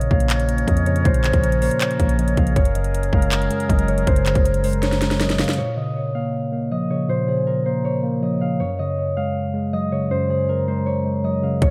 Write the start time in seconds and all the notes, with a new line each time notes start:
Already playing: A#2 C#3 F3 C#4 G#4 A#4 C#5 D#5 F5
0.01 closed hi-hat
0.11 A#1 A#3 F5, kick
0.20 closed hi-hat
0.30 clap, closed hi-hat
0.40 closed hi-hat
0.48 A#3, closed hi-hat
0.58 closed hi-hat
0.68 F2 F3 D#5, kick, closed hi-hat
0.77 closed hi-hat
0.86 C#3 C#5, closed hi-hat
0.96 closed hi-hat
1.05 A#1 A#2 C5, kick, closed hi-hat
1.14 closed hi-hat
1.24 C#3 G#4, clap, closed hi-hat
1.33 A#1, kick, closed hi-hat
1.43 A#4, closed hi-hat
1.52 closed hi-hat
1.62 A#3 C5, open hi-hat
1.71 closed hi-hat
1.81 C#5, clap, closed hi-hat
1.91 closed hi-hat
1.99 A#1 A#3, kick, closed hi-hat
2.09 closed hi-hat
2.18 F3 D#5, closed hi-hat
2.28 closed hi-hat
2.37 A#1 C#3 F5, kick, closed hi-hat
2.47 closed hi-hat
2.56 F#1 F#2 F#3 C#4 G#4 A#4 C#5, kick, closed hi-hat
2.65 closed hi-hat
2.75 C#3 D#5, closed hi-hat
2.84 closed hi-hat
2.94 closed hi-hat
3.03 closed hi-hat
3.13 F#1 G#3 F5, kick
3.22 closed hi-hat
3.32 clap, closed hi-hat
3.42 closed hi-hat
3.50 G#3, closed hi-hat
3.60 closed hi-hat
3.69 F#1 F#3 D#5, kick, closed hi-hat
3.79 closed hi-hat
3.88 C#3 C#5, closed hi-hat
3.98 closed hi-hat
4.07 F#1 F#2 C5, kick, closed hi-hat
4.16 closed hi-hat
4.26 C#3 G#4, clap, closed hi-hat
4.35 F#1, kick, closed hi-hat
4.45 A#4, closed hi-hat
4.54 closed hi-hat
4.64 G#3 C5, open hi-hat
4.73 closed hi-hat
4.82 C#5, snare, closed hi-hat
4.92 snare, closed hi-hat
5.01 G#3, snare, closed hi-hat
5.11 snare, closed hi-hat
5.20 F#3 D#5, snare, closed hi-hat
5.30 snare, closed hi-hat
5.39 C#3 F5, snare, closed hi-hat
5.44 closed hi-hat
5.49 snare, closed hi-hat
5.53 closed hi-hat
5.58 A#2 C#5
5.77 C#3 D#5
6.15 A#3 F5
6.52 A#3
6.71 F3 D#5
6.90 C#3 C#5
7.09 A#2 C5
7.28 C#3 G#4
7.47 A#4
7.66 A#3 C5
7.85 C#5
8.03 A#3
8.22 F3 D#5
8.41 C#3 F5
8.60 F#2 C#5
8.79 C#3 D#5
9.17 G#3 F5
9.54 G#3
9.73 F#3 D#5
9.91 C#3 C#5
10.11 F#2 C5
10.30 C#3 G#4
10.49 A#4
10.68 G#3 C5
10.86 C#5
11.05 G#3
11.24 F#3 D#5
11.43 C#3 F5
11.62 A#1 A#2 F3 C#4 A#4 C#5, kick, closed hi-hat